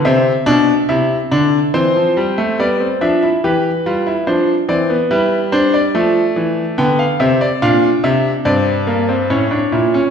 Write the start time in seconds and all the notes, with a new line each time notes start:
0.05 C3 C4 E5
0.46 B2 D4
0.89 C3 E4
1.31 D3 D4
1.74 E3 C4 C5
1.96 F3
2.17 G3
2.38 A3
2.59 G3 B3 D5
2.80 C4
3.01 F3 D4 E5
3.23 E4
3.44 E3 G4 B4
3.86 G3 F4
4.07 E4
4.27 F3 D4 C5
4.69 E3 C4 D5
4.90 B3
5.11 G3 E4 B4
5.52 D4 C5
5.74 D5
5.94 F3 A3
6.36 E3
6.78 D3 B3 G5
6.99 F5
7.20 C3 C4 E5
7.41 D5
7.62 A#2 D4 F5
8.04 C3 E5
8.45 G2 C4 D5
8.87 A#3
9.09 C4
9.30 A2 C#4 C#5
9.51 D4
9.72 A#2 E4
9.94 C#4